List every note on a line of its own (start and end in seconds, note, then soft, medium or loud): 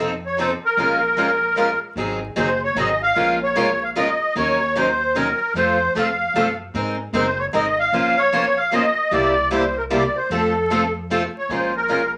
0.00 0.54 F2 medium
0.00 0.10 F3 medium
0.00 0.10 C4 medium
0.00 0.11 D#4 medium
0.00 0.11 A4 medium
0.26 0.39 C#5 medium
0.37 0.49 F3 medium
0.37 0.49 C4 medium
0.37 0.49 D#4 medium
0.37 0.49 A4 medium
0.37 0.51 C5 medium
0.65 1.79 A#4 medium
0.77 1.73 A#1 medium
0.77 0.99 F3 medium
0.77 0.99 G#3 medium
0.77 0.99 C#4 medium
0.77 0.99 F4 medium
0.77 0.99 A#4 medium
1.17 1.28 F3 medium
1.17 1.28 G#3 medium
1.17 1.29 C#4 medium
1.17 1.29 F4 medium
1.17 1.29 A#4 medium
1.56 1.68 F3 medium
1.56 1.68 G#3 medium
1.56 1.68 C#4 medium
1.56 1.69 F4 medium
1.56 1.69 A#4 medium
1.96 2.28 G#1 medium
1.96 2.18 D#3 medium
1.96 2.18 F#3 medium
1.96 2.18 C4 medium
1.96 2.19 D#4 medium
1.96 2.19 G#4 medium
2.36 2.70 F#1 medium
2.36 2.48 D#3 medium
2.36 2.48 F#3 medium
2.36 2.48 C4 medium
2.36 2.48 D#4 medium
2.36 2.48 G#4 medium
2.36 2.61 C5 medium
2.64 2.77 C#5 medium
2.75 3.10 G#1 medium
2.75 2.88 D#3 medium
2.75 2.88 F#3 medium
2.75 2.88 C4 medium
2.75 2.88 D#4 medium
2.75 2.88 G#4 medium
2.75 3.01 D#5 medium
3.02 3.39 F5 loud
3.16 4.12 A#1 medium
3.16 3.38 F3 medium
3.16 3.38 G#3 medium
3.16 3.38 C#4 medium
3.16 3.38 F4 medium
3.16 3.38 A#4 medium
3.43 3.83 C#5 loud
3.56 3.67 F3 medium
3.56 3.68 G#3 medium
3.56 3.68 C#4 medium
3.56 3.68 F4 medium
3.56 3.68 A#4 medium
3.83 3.90 F5 medium
3.97 4.08 F3 medium
3.97 4.08 G#3 medium
3.97 4.08 C#4 medium
3.97 4.08 F4 medium
3.97 4.08 A#4 medium
3.97 4.34 D#5 medium
4.35 5.31 D#2 medium
4.35 4.57 D#3 medium
4.35 4.57 F#3 medium
4.35 4.57 C#4 medium
4.35 4.57 D#4 medium
4.35 4.58 A#4 medium
4.35 4.78 C#5 loud
4.75 4.87 D#3 medium
4.75 4.87 F#3 medium
4.75 4.87 C#4 medium
4.75 4.87 D#4 medium
4.75 4.87 A#4 medium
4.75 5.17 C5 medium
5.15 5.26 D#3 medium
5.15 5.27 F#3 medium
5.15 5.27 C#4 medium
5.15 5.27 D#4 medium
5.15 5.27 A#4 medium
5.15 5.53 A#4 medium
5.54 5.86 F2 medium
5.54 5.76 F3 medium
5.54 5.76 A3 medium
5.54 5.77 C4 medium
5.54 5.77 F4 medium
5.54 5.77 A4 medium
5.54 5.93 C5 medium
5.95 6.28 F2 medium
5.95 6.06 F3 medium
5.95 6.06 A3 medium
5.95 6.07 C4 medium
5.95 6.07 F4 medium
5.95 6.07 A4 medium
5.95 6.56 F5 medium
6.34 6.68 F#2 medium
6.34 6.46 F3 medium
6.34 6.46 A3 medium
6.34 6.46 C4 medium
6.34 6.46 F4 medium
6.34 6.46 A4 medium
6.74 7.06 G#2 medium
6.74 6.96 G#3 medium
6.74 6.96 C4 medium
6.74 6.96 D#4 medium
6.74 6.96 A#4 medium
7.13 7.47 F#1 medium
7.13 7.25 G#3 medium
7.13 7.25 C4 medium
7.13 7.26 D#4 medium
7.13 7.26 A#4 medium
7.13 7.40 C5 medium
7.39 7.46 C#5 medium
7.54 7.88 G#1 medium
7.54 7.65 G#3 medium
7.54 7.65 C4 medium
7.54 7.65 D#4 medium
7.54 7.65 A#4 medium
7.54 7.79 D#5 medium
7.79 8.19 F5 medium
7.92 8.88 A#1 medium
7.92 8.14 F3 medium
7.92 8.14 A#3 medium
7.92 8.14 C#4 medium
7.92 8.15 F4 medium
7.92 8.15 C5 medium
8.17 8.58 C#5 loud
8.33 8.44 F3 medium
8.33 8.44 A#3 medium
8.33 8.44 C#4 medium
8.33 8.44 F4 medium
8.33 8.44 C5 medium
8.57 8.73 F5 medium
8.73 8.84 F3 medium
8.73 8.84 A#3 medium
8.73 8.84 C#4 medium
8.73 8.84 F4 medium
8.73 8.84 C5 medium
8.73 9.13 D#5 medium
9.11 10.07 C2 medium
9.11 9.33 C3 medium
9.11 9.33 G3 medium
9.11 9.34 A#3 medium
9.11 9.34 E4 medium
9.11 9.34 G4 medium
9.11 9.49 D5 medium
9.51 9.63 C3 medium
9.51 9.63 G3 medium
9.51 9.63 A#3 medium
9.51 9.63 E4 medium
9.51 9.63 G4 medium
9.51 9.77 C5 medium
9.77 9.84 A#4 medium
9.90 10.02 C3 medium
9.90 10.02 G3 medium
9.90 10.02 A#3 medium
9.90 10.02 E4 medium
9.90 10.02 G4 medium
9.90 10.17 D5 medium
10.16 10.30 C5 medium
10.30 11.25 F2 medium
10.30 10.52 F3 medium
10.30 10.52 A3 medium
10.30 10.52 C4 medium
10.30 10.52 F4 medium
10.30 10.53 A4 medium
10.30 10.92 A4 medium
10.70 10.81 F3 medium
10.70 10.82 A3 medium
10.70 10.82 C4 medium
10.70 10.82 F4 medium
10.70 10.82 A4 medium
11.10 11.21 F3 medium
11.10 11.21 A3 medium
11.10 11.22 C4 medium
11.10 11.22 F4 medium
11.10 11.22 A4 medium
11.38 11.51 C#5 medium
11.49 12.18 A#1 medium
11.49 11.71 F3 medium
11.49 11.71 G#3 medium
11.49 11.71 C#4 medium
11.49 11.71 F4 soft
11.49 11.71 A#4 medium
11.49 11.74 C5 medium
11.76 12.12 A#4 medium
11.88 12.00 F3 medium
11.88 12.00 G#3 medium
11.88 12.00 C#4 medium
11.88 12.00 F4 medium
11.88 12.01 A#4 medium